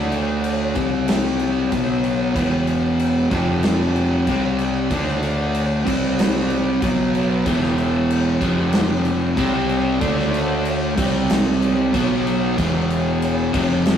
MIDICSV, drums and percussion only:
0, 0, Header, 1, 2, 480
1, 0, Start_track
1, 0, Tempo, 638978
1, 1772, Time_signature, 4, 2, 24, 8
1, 10498, End_track
2, 0, Start_track
2, 0, Title_t, "Drums"
2, 89, Note_on_c, 9, 49, 61
2, 165, Note_off_c, 9, 49, 0
2, 329, Note_on_c, 9, 49, 82
2, 405, Note_off_c, 9, 49, 0
2, 566, Note_on_c, 9, 49, 64
2, 570, Note_on_c, 9, 36, 112
2, 641, Note_off_c, 9, 49, 0
2, 645, Note_off_c, 9, 36, 0
2, 810, Note_on_c, 9, 49, 99
2, 819, Note_on_c, 9, 38, 127
2, 885, Note_off_c, 9, 49, 0
2, 894, Note_off_c, 9, 38, 0
2, 1047, Note_on_c, 9, 49, 63
2, 1122, Note_off_c, 9, 49, 0
2, 1291, Note_on_c, 9, 49, 74
2, 1292, Note_on_c, 9, 36, 107
2, 1366, Note_off_c, 9, 49, 0
2, 1367, Note_off_c, 9, 36, 0
2, 1531, Note_on_c, 9, 49, 61
2, 1606, Note_off_c, 9, 49, 0
2, 1771, Note_on_c, 9, 36, 102
2, 1774, Note_on_c, 9, 49, 73
2, 1847, Note_off_c, 9, 36, 0
2, 1849, Note_off_c, 9, 49, 0
2, 2008, Note_on_c, 9, 49, 56
2, 2083, Note_off_c, 9, 49, 0
2, 2249, Note_on_c, 9, 49, 71
2, 2325, Note_off_c, 9, 49, 0
2, 2489, Note_on_c, 9, 36, 111
2, 2489, Note_on_c, 9, 49, 64
2, 2564, Note_off_c, 9, 36, 0
2, 2564, Note_off_c, 9, 49, 0
2, 2726, Note_on_c, 9, 49, 91
2, 2735, Note_on_c, 9, 38, 122
2, 2801, Note_off_c, 9, 49, 0
2, 2810, Note_off_c, 9, 38, 0
2, 2972, Note_on_c, 9, 49, 58
2, 3047, Note_off_c, 9, 49, 0
2, 3208, Note_on_c, 9, 49, 72
2, 3209, Note_on_c, 9, 36, 98
2, 3283, Note_off_c, 9, 49, 0
2, 3284, Note_off_c, 9, 36, 0
2, 3447, Note_on_c, 9, 49, 53
2, 3522, Note_off_c, 9, 49, 0
2, 3684, Note_on_c, 9, 49, 77
2, 3687, Note_on_c, 9, 36, 106
2, 3760, Note_off_c, 9, 49, 0
2, 3762, Note_off_c, 9, 36, 0
2, 3817, Note_on_c, 9, 38, 29
2, 3892, Note_off_c, 9, 38, 0
2, 3926, Note_on_c, 9, 49, 60
2, 4001, Note_off_c, 9, 49, 0
2, 4166, Note_on_c, 9, 49, 82
2, 4241, Note_off_c, 9, 49, 0
2, 4408, Note_on_c, 9, 36, 106
2, 4412, Note_on_c, 9, 49, 102
2, 4483, Note_off_c, 9, 36, 0
2, 4487, Note_off_c, 9, 49, 0
2, 4649, Note_on_c, 9, 49, 101
2, 4658, Note_on_c, 9, 38, 125
2, 4725, Note_off_c, 9, 49, 0
2, 4734, Note_off_c, 9, 38, 0
2, 4884, Note_on_c, 9, 49, 59
2, 4959, Note_off_c, 9, 49, 0
2, 5124, Note_on_c, 9, 49, 82
2, 5125, Note_on_c, 9, 36, 112
2, 5200, Note_off_c, 9, 36, 0
2, 5200, Note_off_c, 9, 49, 0
2, 5369, Note_on_c, 9, 49, 60
2, 5444, Note_off_c, 9, 49, 0
2, 5603, Note_on_c, 9, 49, 81
2, 5604, Note_on_c, 9, 36, 103
2, 5678, Note_off_c, 9, 49, 0
2, 5679, Note_off_c, 9, 36, 0
2, 5734, Note_on_c, 9, 38, 28
2, 5809, Note_off_c, 9, 38, 0
2, 5844, Note_on_c, 9, 49, 56
2, 5919, Note_off_c, 9, 49, 0
2, 6089, Note_on_c, 9, 49, 79
2, 6164, Note_off_c, 9, 49, 0
2, 6321, Note_on_c, 9, 36, 99
2, 6321, Note_on_c, 9, 49, 61
2, 6396, Note_off_c, 9, 36, 0
2, 6396, Note_off_c, 9, 49, 0
2, 6554, Note_on_c, 9, 49, 90
2, 6563, Note_on_c, 9, 38, 123
2, 6629, Note_off_c, 9, 49, 0
2, 6639, Note_off_c, 9, 38, 0
2, 6797, Note_on_c, 9, 49, 61
2, 6872, Note_off_c, 9, 49, 0
2, 7041, Note_on_c, 9, 36, 110
2, 7043, Note_on_c, 9, 49, 75
2, 7116, Note_off_c, 9, 36, 0
2, 7118, Note_off_c, 9, 49, 0
2, 7282, Note_on_c, 9, 49, 54
2, 7357, Note_off_c, 9, 49, 0
2, 7521, Note_on_c, 9, 49, 80
2, 7523, Note_on_c, 9, 36, 101
2, 7596, Note_off_c, 9, 49, 0
2, 7598, Note_off_c, 9, 36, 0
2, 7658, Note_on_c, 9, 38, 30
2, 7733, Note_off_c, 9, 38, 0
2, 7768, Note_on_c, 9, 49, 61
2, 7843, Note_off_c, 9, 49, 0
2, 8002, Note_on_c, 9, 49, 86
2, 8077, Note_off_c, 9, 49, 0
2, 8244, Note_on_c, 9, 49, 108
2, 8245, Note_on_c, 9, 36, 118
2, 8320, Note_off_c, 9, 36, 0
2, 8320, Note_off_c, 9, 49, 0
2, 8486, Note_on_c, 9, 49, 90
2, 8495, Note_on_c, 9, 38, 127
2, 8561, Note_off_c, 9, 49, 0
2, 8570, Note_off_c, 9, 38, 0
2, 8731, Note_on_c, 9, 49, 59
2, 8806, Note_off_c, 9, 49, 0
2, 8969, Note_on_c, 9, 49, 81
2, 8970, Note_on_c, 9, 36, 103
2, 9044, Note_off_c, 9, 49, 0
2, 9045, Note_off_c, 9, 36, 0
2, 9216, Note_on_c, 9, 49, 62
2, 9292, Note_off_c, 9, 49, 0
2, 9452, Note_on_c, 9, 36, 97
2, 9452, Note_on_c, 9, 49, 82
2, 9527, Note_off_c, 9, 36, 0
2, 9528, Note_off_c, 9, 49, 0
2, 9694, Note_on_c, 9, 49, 60
2, 9769, Note_off_c, 9, 49, 0
2, 9933, Note_on_c, 9, 49, 79
2, 10008, Note_off_c, 9, 49, 0
2, 10171, Note_on_c, 9, 36, 110
2, 10171, Note_on_c, 9, 49, 99
2, 10246, Note_off_c, 9, 49, 0
2, 10247, Note_off_c, 9, 36, 0
2, 10409, Note_on_c, 9, 49, 90
2, 10418, Note_on_c, 9, 38, 122
2, 10484, Note_off_c, 9, 49, 0
2, 10493, Note_off_c, 9, 38, 0
2, 10498, End_track
0, 0, End_of_file